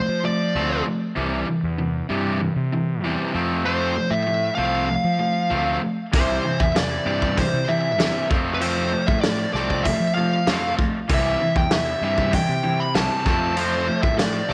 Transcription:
Already playing: overdriven electric guitar F3 A3, lead electric guitar C5
0.08 fingered electric bass F3
0.24 overdriven electric guitar F3 A3, lead electric guitar D5
0.55 fingered electric bass D2, overdriven electric guitar F3 A3 C4
0.86 overdriven electric guitar F3 A3
1.16 fingered electric bass C2, overdriven electric guitar C3 E3 G3
1.47 overdriven electric guitar C3 E3
1.63 fingered electric bass E2
1.78 overdriven electric guitar C3 E3
2.09 fingered electric bass G2, overdriven electric guitar C3 E3 G3
2.40 overdriven electric guitar C3 E3
2.56 fingered electric bass C3
2.72 overdriven electric guitar C3 E3
3.03 fingered electric bass E2, overdriven electric guitar C3 E3 G3
3.34 fingered electric bass F2, overdriven electric guitar F3 A3 C4
3.65 overdriven electric guitar F3 A3 C4, lead electric guitar C5
3.97 overdriven electric guitar F3 A3
4.11 fingered electric bass A2, lead electric guitar E5
4.27 overdriven electric guitar F3 A3
4.55 fingered electric bass C2, overdriven electric guitar F3 A3 C4, lead electric guitar F5
4.89 overdriven electric guitar F3 A3
5.04 fingered electric bass F3
5.19 overdriven electric guitar F3 A3
5.50 fingered electric bass D2, overdriven electric guitar F3 A3 C4
5.81 overdriven electric guitar F3 A3
6.13 fingered electric bass C2, overdriven electric guitar C3 E3 G3 C4 E4, lead electric guitar C5, kick, open hi-hat
6.43 overdriven electric guitar C3 E3 G3 C4 E4
6.60 fingered electric bass E2, lead electric guitar E5, kick
6.75 overdriven electric guitar C3 E3, lead electric guitar D5, snare, open hi-hat
6.90 overdriven electric guitar E3 G3 C4 E4
7.06 fingered electric bass G2, overdriven electric guitar C3 E3 G3, lead electric guitar D5, muted overdriven electric guitar stroke
7.22 muted overdriven electric guitar stroke, kick
7.36 overdriven electric guitar C3 E3 G3 C4 E4, lead electric guitar C5, kick, open hi-hat
7.53 fingered electric bass C3
7.68 overdriven electric guitar C3 E3 G3 C4 E4, lead electric guitar E5
7.98 fingered electric bass E2, overdriven electric guitar C3 E3 G3, snare, open hi-hat
8.30 fingered electric bass F2, overdriven electric guitar F3 A3 C4 F4, kick
8.54 lead electric guitar B4
8.61 overdriven electric guitar F3 A3 C4 F4, lead electric guitar C5, open hi-hat
8.93 overdriven electric guitar F3 A3 C4 F4
9.07 fingered electric bass A2, lead electric guitar E5, kick
9.21 overdriven electric guitar F3 A3, lead electric guitar D5, snare, open hi-hat
9.38 overdriven electric guitar F3 A3 C4 F4
9.53 fingered electric bass C2, overdriven electric guitar F3 A3 C4, lead electric guitar D5, muted overdriven electric guitar stroke, snare
9.69 muted overdriven electric guitar stroke, kick
9.84 overdriven electric guitar F3 A3 C4 F4, lead electric guitar E5, kick, open hi-hat
10.00 fingered electric bass F3
10.14 overdriven electric guitar F3 A3 C4 F4, lead electric guitar F5
10.47 fingered electric bass F2, overdriven electric guitar F3 A3 C4, snare, open hi-hat
10.77 overdriven electric guitar F3 A3 C4 F4, kick
11.08 fingered electric bass C2, overdriven electric guitar C3 E3 G3 C4 E4, kick, open hi-hat
11.14 lead electric guitar E5
11.40 overdriven electric guitar C3 E3 G3 C4 E4
11.56 fingered electric bass E2, lead electric guitar G5, kick
11.71 overdriven electric guitar C3 E3, lead electric guitar E5, snare, open hi-hat
11.85 overdriven electric guitar E3 G3 C4 E4
12.00 fingered electric bass G2, overdriven electric guitar C3 E3 G3, muted overdriven electric guitar stroke
12.04 lead electric guitar E5
12.16 muted overdriven electric guitar stroke, kick
12.31 overdriven electric guitar C3 E3 G3 C4 E4, lead electric guitar G5, kick, open hi-hat
12.49 fingered electric bass C3
12.63 overdriven electric guitar C3 E3 G3 C4 E4
12.80 lead electric guitar B5
12.95 fingered electric bass C2, overdriven electric guitar C3 E3 G3, lead electric guitar A5, snare, open hi-hat
13.25 fingered electric bass F2, overdriven electric guitar F3 A3 C4 F4, lead electric guitar A5, kick, snare
13.56 overdriven electric guitar F3 A3 C4 F4, lead electric guitar C5, open hi-hat
13.86 overdriven electric guitar F3 A3 C4 F4
14.02 fingered electric bass A2, lead electric guitar E5, kick
14.17 overdriven electric guitar F3 A3, lead electric guitar D5, snare, open hi-hat
14.33 overdriven electric guitar F3 A3 C4 F4
14.48 fingered electric bass C2, overdriven electric guitar F3 A3 C4, lead electric guitar D5, muted overdriven electric guitar stroke, snare

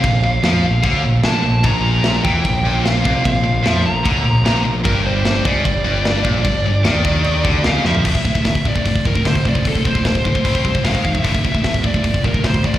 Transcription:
Already playing: lead electric guitar F5
0.04 picked electric bass A#1, distorted electric guitar A#2, kick, crash
0.24 picked electric bass A#1, distorted electric guitar A#2
0.43 picked electric bass F2, distorted electric guitar F3, snare, crash
0.63 picked electric bass A#1, distorted electric guitar A#2
0.83 picked electric bass D2, distorted electric guitar D3, kick, crash
1.04 picked electric bass A#1, distorted electric guitar A#2
1.23 picked electric bass A#1, distorted electric guitar A#2, lead electric guitar A5, snare, crash
1.44 picked electric bass A#1, distorted electric guitar A#2
1.62 picked electric bass A#1, pipe organ A#2 F3 F4 A#4, distorted electric guitar A#2, lead electric guitar A#5, kick, crash
2.04 snare, crash
2.24 picked electric bass E2, distorted electric guitar E3, lead electric guitar G5, kick
2.45 picked electric bass A#1, distorted electric guitar A#2, kick, crash
2.65 picked electric bass A#1, distorted electric guitar A#2
2.85 lead electric guitar F5, snare, crash
3.04 picked electric bass C2, distorted electric guitar C3, kick
3.24 picked electric bass A#1, distorted electric guitar A#2, lead electric guitar F5, kick, crash
3.44 picked electric bass A#1, distorted electric guitar A#2
3.64 picked electric bass F2, distorted electric guitar F3, snare, crash
3.70 lead electric guitar E5
3.84 picked electric bass A#1, distorted electric guitar A#2, lead electric guitar A#5
4.05 picked electric bass D2, distorted electric guitar D3, kick, crash
4.24 picked electric bass A#1, distorted electric guitar A#2
4.44 picked electric bass A#1, distorted electric guitar A#2, snare, crash
4.64 picked electric bass A#1, distorted electric guitar A#2
4.84 picked electric bass G1, distorted electric guitar G2, pipe organ G3 D4 G4 D5, lead electric guitar A#4, kick, crash
5.06 lead electric guitar C5
5.25 snare, crash
5.45 picked electric bass C#2, distorted electric guitar C#3, lead electric guitar D5, kick
5.64 picked electric bass G1, distorted electric guitar G2, lead electric guitar D5, kick, crash
5.84 picked electric bass G1, distorted electric guitar G2
6.05 snare, crash
6.24 picked electric bass A#1, distorted electric guitar A#2, kick
6.45 picked electric bass G1, distorted electric guitar G2, kick, crash
6.64 picked electric bass G1, distorted electric guitar G2
6.84 picked electric bass D#2, distorted electric guitar D#3, snare, crash
7.04 picked electric bass D#2, distorted electric guitar D#3, kick
7.24 crash
7.44 picked electric bass D2, distorted electric guitar D3, kick
7.64 picked electric bass C#2, distorted electric guitar C#3, lead electric guitar F5, snare, crash
7.85 picked electric bass F2, distorted electric guitar F3, lead electric guitar E5, snare
7.95 floor tom
8.04 picked electric bass D1, distorted electric guitar D2 A2 D3, kick, crash
8.14 distorted electric guitar D2 A2, kick
8.25 picked electric bass D1, distorted electric guitar D2 A2, kick
8.35 distorted electric guitar D2 A2, kick
8.45 picked electric bass D1, distorted electric guitar D2 A2, kick, snare, open hi-hat
8.55 kick
8.65 picked electric bass D1, distorted electric guitar D2 A2, lead electric guitar D5, kick
8.76 distorted electric guitar D2 A2, kick
8.85 picked electric bass G1, distorted electric guitar D2 A2, kick, open hi-hat
8.96 kick
9.05 picked electric bass D1, distorted electric guitar D2 A2, lead electric guitar A#4, kick
9.15 distorted electric guitar D2 A2, kick
9.25 distorted electric guitar D2 A2, picked electric bass D2, lead electric guitar C5, kick, snare, open hi-hat
9.35 kick
9.45 picked electric bass C2, distorted electric guitar D2 A2, lead electric guitar D5, kick
9.55 distorted electric guitar D2 A2, kick
9.65 picked electric bass D1, distorted electric guitar D2 A2, lead electric guitar A4, kick, open hi-hat
9.75 distorted electric guitar D2 A2, kick
9.85 picked electric bass D1, distorted electric guitar D2 A2, lead electric guitar C5, kick
9.95 distorted electric guitar D2 A2, kick
10.05 picked electric bass D1, distorted electric guitar D2 A2, kick, snare, open hi-hat
10.15 kick
10.25 picked electric bass D1, distorted electric guitar D2 A2, kick
10.35 distorted electric guitar D2 A2, kick
10.45 picked electric bass C2, distorted electric guitar C3 G3 C4, kick, open hi-hat
10.55 kick
10.65 picked electric bass C2, distorted electric guitar C3 G3, kick
10.75 distorted electric guitar C3 G3, kick
10.84 picked electric bass G#1, distorted electric guitar G#2 D#3 G#3, lead electric guitar F5, kick, snare, open hi-hat
10.95 kick
11.04 picked electric bass F1, distorted electric guitar G#2 D#3, lead electric guitar F5, kick
11.15 distorted electric guitar G#2 D#3, lead electric guitar E5, kick
11.24 picked electric bass D1, distorted electric guitar D2 A2 D3, kick, open hi-hat
11.34 distorted electric guitar D2 A2, kick
11.44 picked electric bass D1, distorted electric guitar D2 A2, kick
11.54 distorted electric guitar D2 A2, kick
11.64 picked electric bass D1, distorted electric guitar D2 A2, kick, snare, open hi-hat
11.74 kick
11.84 picked electric bass D1, distorted electric guitar D2 A2, lead electric guitar D5, kick
11.94 distorted electric guitar D2 A2, kick
12.04 picked electric bass G1, distorted electric guitar D2 A2, kick, open hi-hat
12.14 kick
12.24 picked electric bass D1, distorted electric guitar D2 A2, lead electric guitar A#4, kick
12.34 distorted electric guitar D2 A2, kick
12.44 picked electric bass D2, distorted electric guitar D2 A2, lead electric guitar C5, kick, snare, open hi-hat
12.54 kick
12.64 picked electric bass C2, distorted electric guitar D2 A2, lead electric guitar D5, kick
12.73 distorted electric guitar D2 A2, kick

